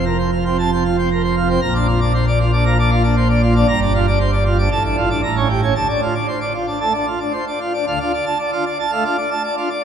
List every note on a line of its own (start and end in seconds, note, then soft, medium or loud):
0.00 1.58 F1 medium
0.00 1.58 F2 medium
0.05 0.17 A#4 medium
0.18 0.31 C5 medium
0.32 0.44 F4 medium
0.45 0.57 C4 medium
0.45 0.57 C5 medium
0.59 0.70 C3 medium
0.59 0.70 A5 medium
0.72 0.83 C4 medium
0.72 0.83 C5 medium
0.85 0.96 F4 medium
0.98 1.09 C4 medium
0.98 1.09 C5 medium
1.11 1.22 A#4 medium
1.24 1.35 C5 medium
1.36 1.48 F4 medium
1.49 1.60 C4 medium
1.49 1.60 C5 medium
1.61 3.64 A#1 medium
1.61 3.64 A#2 medium
1.61 1.73 A#5 loud
1.75 1.87 D4 medium
1.75 1.87 D5 medium
1.88 2.00 F4 medium
2.01 2.13 D4 medium
2.01 2.12 D5 medium
2.14 2.25 C5 medium
2.28 2.39 D5 medium
2.39 2.51 F4 medium
2.53 2.64 D4 medium
2.53 2.64 D5 medium
2.66 2.77 F3 medium
2.66 2.77 A#5 medium
2.79 2.90 D4 medium
2.79 2.90 D5 medium
2.91 3.02 F4 medium
3.03 3.15 D4 medium
3.03 3.15 D5 medium
3.17 3.28 C5 medium
3.30 3.41 D5 medium
3.42 3.54 F4 medium
3.56 3.67 D4 medium
3.56 3.67 D5 medium
3.68 4.68 G1 loud
3.68 4.68 G2 medium
3.68 3.80 A#5 loud
3.82 3.93 D4 medium
3.82 3.93 D5 medium
3.95 4.06 F4 medium
4.07 4.18 D4 medium
4.07 4.18 D5 medium
4.20 4.31 C5 medium
4.32 4.44 D5 medium
4.46 4.57 F4 medium
4.59 4.69 D4 medium
4.59 4.69 D5 medium
4.72 5.21 A1 medium
4.72 5.21 A2 medium
4.72 4.83 A5 loud
4.85 4.96 D4 medium
4.85 4.96 D5 medium
4.97 5.09 F4 medium
5.10 5.21 D4 medium
5.10 5.21 D5 medium
5.23 5.74 A1 medium
5.23 5.74 A2 medium
5.23 5.35 A#5 medium
5.36 5.48 C#4 medium
5.36 5.48 C#5 medium
5.49 5.61 G4 medium
5.62 5.74 C#4 medium
5.62 5.73 C#5 medium
5.75 5.87 D2 medium
5.75 5.87 D3 medium
5.75 5.87 A5 medium
5.89 6.00 D4 medium
5.89 6.00 D5 medium
6.02 6.14 F4 soft
6.15 6.27 D4 soft
6.15 6.27 D5 medium
6.28 6.39 C5 soft
6.41 6.53 D5 medium
6.54 6.66 F4 medium
6.67 6.79 D4 soft
6.67 6.79 D5 medium
6.80 6.93 A3 soft
6.80 6.93 A5 medium
6.93 7.06 D4 soft
6.93 7.06 D5 medium
7.07 7.19 F4 soft
7.20 7.32 D4 soft
7.20 7.32 D5 soft
7.33 7.45 C5 soft
7.47 7.59 D5 medium
7.60 7.72 F4 medium
7.74 7.85 D4 soft
7.74 7.85 D5 medium
7.87 7.98 D2 medium
7.87 7.98 D3 medium
7.87 7.99 F5 medium
8.00 8.12 D4 medium
8.00 8.12 F4 medium
8.13 8.25 D5 medium
8.26 8.38 A5 medium
8.39 8.51 D5 medium
8.52 8.64 D4 medium
8.52 8.64 F4 medium
8.66 8.78 D5 medium
8.80 8.91 A5 medium
8.92 9.03 A3 medium
8.92 9.03 F5 medium
9.05 9.16 D4 medium
9.05 9.16 F4 medium
9.18 9.29 D5 medium
9.30 9.42 A5 medium
9.44 9.55 D5 medium
9.57 9.69 D4 medium
9.57 9.69 F4 medium
9.70 9.82 D5 medium